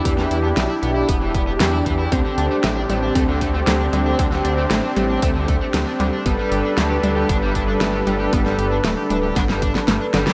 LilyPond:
<<
  \new Staff \with { instrumentName = "Supersaw synth" } { \time 4/4 \key d \mixolydian \tempo 4 = 116 << { <d' e' g'>1~ | <d' e' g'>1~ | <d' e' g'>1 | <g a' b'>1~ |
<g a' b'>1 | } \\ { r1 | c'1~ | c'1 | d'1~ |
d'1 | } >> }
  \new Staff \with { instrumentName = "Overdriven electric guitar" } { \time 4/4 \key d \mixolydian e16 e16 e'16 b16 e16 e'16 b16 e'16 b16 e16 b16 b16 e16 e'16 e16 e'16 | d16 d16 d'16 a16 d16 d'16 a16 d'16 a16 d16 a16 a16 d16 d'16 d16 d'16 | d16 d16 d'16 a16 d16 d'16 a16 d'16 a16 d16 a16 a16 d16 d'16 d16 d'16 | g16 g16 g'16 d'16 g16 g'16 d'16 g'16 d'16 g16 d'16 d'16 g16 g'16 g16 g'16 |
g16 g16 g'16 d'16 g16 g'16 d'16 g'16 d'16 g16 d'16 b16 g16 d'16 g16 g'16 | }
  \new Staff \with { instrumentName = "Synth arpeggio sound" } { \time 4/4 \key d \mixolydian r1 | c'8 r8 a8 g8 c'8 r8 a8 g8 | c'8 r8 a8 g8 c'8 r8 a8 g8 | b8 r8 a8 g8 b8 r8 a8 g8 |
b8 r8 a8 g8 b8 r8 a8 d8 | }
  \new Staff \with { instrumentName = "Detuned saw bass" } { \clef bass \time 4/4 \key d \mixolydian e,8 e,8 b,,16 r16 b,,8 e,,16 e,,16 e,,8 e,8 e,8 | d,16 r16 d,16 r16 a,,8 a,,8 d,16 d,16 d,8 d,8 d,8 | d,8 d,8 a,,16 r16 a,,8 d,16 d,16 d,16 r16 d,16 r16 d,16 r16 | g,,16 r16 g,,16 r16 d,8 d,8 g,,16 g,,16 g,,8 g,,8 g,,8 |
g,,8 g,,8 d,,16 r16 d,,8 g,,16 g,,16 g,,16 r16 g,,16 r16 g,,16 r16 | }
  \new DrumStaff \with { instrumentName = "Drums" } \drummode { \time 4/4 <hh bd>16 sn16 hh8 <hh sn>8 hh8 <hh bd>8 <hh bd>8 <hh sn>8 <hh bd>8 | <hh bd>8 hh8 <hh sn>8 hh8 <hh bd>8 <hh bd>8 <hh sn>8 hh8 | <hh bd>16 sn16 hh8 <hh sn>8 hh8 <hh bd>8 <hh bd>8 <hh sn>8 hh8 | <hh bd>8 hh8 <hh sn>8 hh8 <hh bd>8 <hh bd>8 <hh sn>8 hh8 |
<hh bd>16 sn16 hh8 <hh sn>8 hh8 <hh bd sn>16 sn16 <hh bd>16 sn16 <hh sn>8 <hh sn>16 sn16 | }
>>